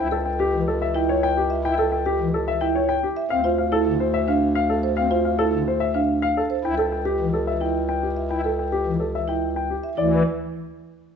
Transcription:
Already playing: bass clarinet C#2
0.00 grand piano G5
0.11 marimba A4, grand piano A4
0.26 grand piano G5
0.39 marimba G4, grand piano G4
0.53 pipe organ E3
0.68 grand piano A4
0.82 grand piano E5
0.95 marimba E4, grand piano G5
1.09 grand piano C#5
1.23 grand piano G5
1.37 grand piano G4
1.50 marimba E5
1.64 pipe organ E4, grand piano G5
1.78 marimba A4, grand piano A4
1.92 grand piano G5
2.06 marimba G4, grand piano G4
2.19 pipe organ E3
2.34 grand piano A4
2.48 grand piano E5
2.61 marimba E4, grand piano G5
2.75 grand piano C#5
2.89 grand piano G5
3.03 grand piano G4
3.17 marimba E5
3.30 bass clarinet D2, pipe organ C4, grand piano F5
3.44 marimba F4, grand piano C5
3.58 grand piano F5
3.72 marimba E4, grand piano A4
3.86 pipe organ D3
4.00 grand piano C5
4.14 grand piano E5
4.28 marimba D4, grand piano F5
4.55 grand piano F5
4.70 grand piano A4
4.83 marimba C5
4.97 pipe organ C4, grand piano F5
5.11 marimba F4, grand piano C5
5.25 grand piano F5
5.39 marimba E4, grand piano A4
5.53 pipe organ D3
5.68 grand piano C5
5.80 grand piano E5
5.94 marimba D4, grand piano F5
6.22 grand piano F5
6.37 grand piano A4
6.50 marimba C5
6.64 bass clarinet C#2, pipe organ E4, grand piano G5
6.78 marimba A4, grand piano A4
6.92 grand piano G5
7.05 grand piano G4, marimba G4
7.20 pipe organ E3
7.34 grand piano A4
7.47 grand piano E5
7.61 marimba E4, grand piano G5
7.89 grand piano G5
8.03 grand piano G4
8.17 marimba E5
8.30 pipe organ E4, grand piano G5
8.44 marimba A4, grand piano A4
8.59 grand piano G5
8.72 marimba G4, grand piano G4
8.86 pipe organ E3
9.00 grand piano A4
9.15 grand piano E5
9.28 marimba E4, grand piano G5
9.56 grand piano G5
9.70 grand piano G4
9.84 marimba E5
9.97 bass clarinet D2, pipe organ E3, marimba E4, grand piano D5

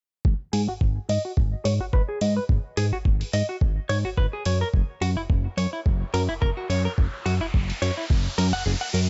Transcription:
0.25 analog synth bass G#1, kick
0.53 analog synth bass G#2, clean electric guitar G#4, open hi-hat
0.68 analog synth bass G#1, clean electric guitar F#4
0.81 analog synth bass G#1, kick
1.09 analog synth bass G#2, clean electric guitar D#5, open hi-hat
1.25 clean electric guitar F#4
1.37 analog synth bass G#1, kick
1.65 analog synth bass G#2, clean electric guitar C#5, open hi-hat
1.81 analog synth bass G#1, clean electric guitar F#4
1.93 analog synth bass G#1, clean electric guitar B4, kick
2.09 clean electric guitar G#4
2.21 analog synth bass G#2, clean electric guitar D#5, open hi-hat
2.37 clean electric guitar B4
2.49 analog synth bass G#1, kick
2.77 analog synth bass G#2, clean electric guitar G#4, open hi-hat
2.93 analog synth bass G#1, clean electric guitar F#4
3.05 analog synth bass G#1, kick
3.21 open hi-hat
3.33 analog synth bass G#2, clean electric guitar D#5, open hi-hat
3.49 clean electric guitar F#4
3.61 analog synth bass G#1, kick
3.89 analog synth bass G#2, clean electric guitar C#5, open hi-hat
4.05 analog synth bass G#1, clean electric guitar F#4
4.17 analog synth bass G#1, clean electric guitar B4, kick
4.33 clean electric guitar G#4
4.45 analog synth bass F#2, clean electric guitar C#5, open hi-hat
4.61 clean electric guitar A#4
4.74 analog synth bass F#1, kick, riser
5.01 analog synth bass F#2, clean electric guitar F#4, open hi-hat
5.17 analog synth bass F#1, clean electric guitar E4
5.30 analog synth bass F#1, kick
5.57 analog synth bass F#2, clean electric guitar C#5, open hi-hat
5.73 clean electric guitar E4
5.86 analog synth bass F#1, kick
6.14 analog synth bass F#2, clean electric guitar A#4, open hi-hat
6.29 analog synth bass F#1, clean electric guitar E4
6.42 analog synth bass F#1, clean electric guitar A#4, kick
6.57 clean electric guitar F#4
6.70 analog synth bass F#2, clean electric guitar C#5, open hi-hat
6.85 clean electric guitar A#4
6.98 analog synth bass F#1, kick
7.26 analog synth bass F#2, clean electric guitar F#4, open hi-hat
7.41 analog synth bass F#1, clean electric guitar E4
7.54 analog synth bass F#1, kick
7.70 open hi-hat
7.82 analog synth bass F#2, clean electric guitar C#5, open hi-hat
7.97 clean electric guitar E4
8.10 analog synth bass F#1, kick
8.38 analog synth bass F#2, clean electric guitar A#4, open hi-hat
8.53 analog synth bass F#1, clean electric guitar F#5
8.66 analog synth bass F#1, clean electric guitar G#4
8.81 clean electric guitar F#5
8.94 analog synth bass F#2, clean electric guitar A#4, open hi-hat

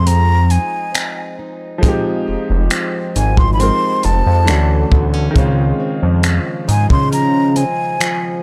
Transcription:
Already playing: analog synth bass F2, grand piano F3 G#3 C4 D#4 G#4, steel-string acoustic guitar F3 D#4 G#4
0.07 steel-string acoustic guitar C4, flute A#5, closed hi-hat
0.50 steel-string acoustic guitar D#4, flute G#5, closed hi-hat
0.95 steel-string acoustic guitar C4, finger snap, closed hi-hat
1.39 steel-string acoustic guitar D#4
1.78 grand piano F3 G#3
1.83 steel-string acoustic guitar F3 G#4, grand piano C4 D#4, kick, closed hi-hat
1.88 grand piano G4
2.27 analog synth bass F1, steel-string acoustic guitar D#4
2.50 analog synth bass F1
2.70 steel-string acoustic guitar C4, finger snap, closed hi-hat
3.16 analog synth bass G#1, flute G#5, closed hi-hat
3.37 flute C6, kick
3.53 grand piano F3, flute B5
3.59 grand piano G#3 C4 D#4 A#4, steel-string acoustic guitar C4, flute C6, closed hi-hat
4.03 analog synth bass F1, steel-string acoustic guitar D#4, flute A5, closed hi-hat
4.26 analog synth bass F2
4.45 analog synth bass D2, steel-string acoustic guitar D3, grand piano E3 A3 C#4 D4, finger snap, closed hi-hat
4.50 grand piano F#4
4.92 analog synth bass D2, steel-string acoustic guitar B3, kick
5.14 steel-string acoustic guitar C#4
5.31 grand piano D#3 G#3
5.36 analog synth bass C#2, steel-string acoustic guitar C#3 D#4, grand piano C4 C#4, kick, closed hi-hat
5.40 grand piano F4
5.80 steel-string acoustic guitar C4
6.03 analog synth bass F2
6.23 steel-string acoustic guitar F3, finger snap, closed hi-hat
6.68 analog synth bass G#2, steel-string acoustic guitar D#4, flute G#5, closed hi-hat
6.90 analog synth bass C#3, flute C6, kick
7.12 steel-string acoustic guitar F3, flute A#5, closed hi-hat
7.56 steel-string acoustic guitar C4, flute G#5, closed hi-hat
8.00 steel-string acoustic guitar F3, finger snap, closed hi-hat

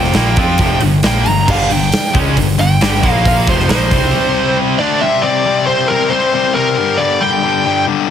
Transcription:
Already playing: picked electric bass F1, distorted electric guitar F2 C3 F3, lead electric guitar G5
0.04 snare
0.14 picked electric bass A#1, distorted electric guitar A#2 F3 A#3, snare, open hi-hat
0.36 picked electric bass F2, distorted electric guitar F3 C4 F4, kick, open hi-hat
0.58 picked electric bass F1, distorted electric guitar F2 C3 F3, kick, open hi-hat
0.81 picked electric bass G1, distorted electric guitar G2 D3, open hi-hat
1.03 picked electric bass A#1, distorted electric guitar A#2 F3 A#3, lead electric guitar G5, snare, open hi-hat
1.25 picked electric bass G1, distorted electric guitar G2 D3, lead electric guitar A#5, open hi-hat
1.48 picked electric bass G1, distorted electric guitar G2 D3 G3, lead electric guitar F5, kick, crash
1.70 picked electric bass G1, distorted electric guitar G2 D3, lead electric guitar G5, open hi-hat
1.83 snare
1.92 snare, open hi-hat
2.14 picked electric bass C#2, distorted electric guitar C#3 G#3 C#4, kick, open hi-hat
2.36 picked electric bass G1, distorted electric guitar G2 D3, kick, open hi-hat
2.58 picked electric bass G1, distorted electric guitar G2 D3, lead electric guitar G5, open hi-hat
2.81 picked electric bass G1, distorted electric guitar G2 D3 G3, snare, open hi-hat
2.94 snare
3.03 picked electric bass A#1, distorted electric guitar A#2 F3 A#3, kick, open hi-hat
3.11 lead electric guitar F5
3.25 lead electric guitar F5, kick, open hi-hat
3.47 picked electric bass F1, distorted electric guitar F2 C3 F3, lead electric guitar C5, kick, open hi-hat
3.60 snare
3.69 picked electric bass A#1, distorted electric guitar A#2 F3 A#3, lead electric guitar C5, snare, open hi-hat
3.91 picked electric bass C2, distorted electric guitar C3 G3 C4, kick, open hi-hat
4.79 distorted electric guitar D3 A3 D4, lead electric guitar D5
5.01 distorted electric guitar C3 G3 C4, lead electric guitar E5
5.22 distorted electric guitar C3 G3 C4, lead electric guitar D5
5.46 distorted electric guitar C3 G3 C4
5.67 distorted electric guitar C3 G3 C4, lead electric guitar C5
5.88 distorted electric guitar C3 G3 C4, lead electric guitar A#4
6.10 distorted electric guitar C3 G3 C4, lead electric guitar C5
6.34 distorted electric guitar C3 G3 C4
6.54 distorted electric guitar C3 G3 C4, lead electric guitar A#4
6.78 distorted electric guitar G2 D3 G3
6.97 distorted electric guitar G2 D3 G3, lead electric guitar D5
7.21 distorted electric guitar G2 D3 G3, lead electric guitar G5
7.44 distorted electric guitar G2 D3 G3
7.65 distorted electric guitar G2 D3 G3
7.87 distorted electric guitar G2 D3 G3

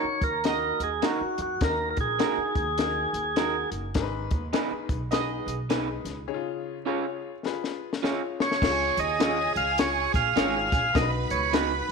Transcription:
Already playing: upright piano D#3 D#4 F#4 A#4, tonewheel organ C#5
0.03 muted upright bass stroke
0.21 upright bass D#2, tonewheel organ A#4, kick, closed hi-hat
0.44 horn section A#3 F#4 D#5, upright piano D#4 F#4 A#4, tonewheel organ A#4, snare, closed hi-hat
0.79 upright bass D#2, closed hi-hat
0.84 tonewheel organ G#4
1.02 clean electric guitar A#3 D#4 F#4 A#4, upright piano D#4 F#4 A#4, tonewheel organ F#4, snare, closed hi-hat
1.21 muted upright bass stroke
1.38 upright bass F2, closed hi-hat
1.42 tonewheel organ F#4
1.61 upright bass D#2, upright piano D#3 D#4 F#4 A#4, tonewheel organ A#4, kick, snare, closed hi-hat
1.90 tonewheel organ A#4
1.97 upright bass A#1, tonewheel organ G#4, kick, closed hi-hat
2.19 clean electric guitar A#3 D#4 F#4 A#4, upright piano D#4 F#4 A#4, snare, closed hi-hat
2.37 muted upright bass stroke
2.55 upright bass D#2, kick, closed hi-hat
2.78 upright piano D#4 F#4 A#4, snare, closed hi-hat
3.13 upright bass D#2, closed hi-hat
3.36 clean electric guitar A#3 D#4 F#4 A#4, upright piano D#4 F#4 G#4, snare, closed hi-hat
3.43 upright piano A#4
3.71 upright bass F#1, closed hi-hat
3.94 upright bass G#1, upright piano G#2 D#4 G#4 A#4, kick, snare, closed hi-hat
4.02 upright piano B4
4.31 upright bass D#2, kick, closed hi-hat
4.53 clean electric guitar B3 D#4 G#4 B4, upright piano D#4 G#4 B4, snare, closed hi-hat
4.71 muted upright bass stroke
4.89 upright bass B1, kick, closed hi-hat
5.11 horn section B3 G#4 D#5, upright piano D#4 G#4 B4, snare, closed hi-hat
5.46 upright bass B1, closed hi-hat
5.70 clean electric guitar B3 D#4 G#4 B4, upright piano D#4 G#4 B4, snare, closed hi-hat
6.05 upright bass C#2, snare, closed hi-hat
6.28 upright piano C#3 D#4 G#4 C#5
6.34 upright piano F4
6.86 clean electric guitar C#4 F4 G#4 C#5, upright piano F4 G#4 C#5
7.45 upright piano F4 G#4 B4, snare
7.64 snare
7.93 snare
8.02 clean electric guitar C#4 F4 G#4 C#5, upright piano E4 G#4 C#5, snare
8.10 upright piano F4
8.40 tonewheel organ C#5, snare
8.51 snare
8.62 upright bass C#2, upright piano C#3 F4 G#4 C#5, violin section G#4 G#5, kick, snare, crash
8.97 upright bass D#2, tonewheel organ D#5, closed hi-hat
9.19 clean electric guitar C#4 F4 G#4 C#5, upright piano F4 G#4 C#5, snare, closed hi-hat
9.56 upright bass C#2, tonewheel organ F5, closed hi-hat
9.78 upright piano F4 G#4 C#5, tonewheel organ C#5, snare, closed hi-hat
10.14 upright bass A#1, tonewheel organ F5, kick, closed hi-hat
10.36 upright bass G#1, clean electric guitar C#4 F4 G#4 C#5, upright piano F4 G#4 C#5, snare, closed hi-hat
10.72 upright bass A#1, kick, snare, closed hi-hat
10.95 upright bass B1, upright piano B2 D#4 F#4 A#4, violin section B4 B5, tonewheel organ D#5, kick, snare, closed hi-hat
11.02 upright piano B4
11.30 upright bass C#2, tonewheel organ C#5, closed hi-hat
11.53 clean electric guitar B3 D#4 F#4 B4, upright piano D#4 F#4 B4, tonewheel organ B4, snare, closed hi-hat

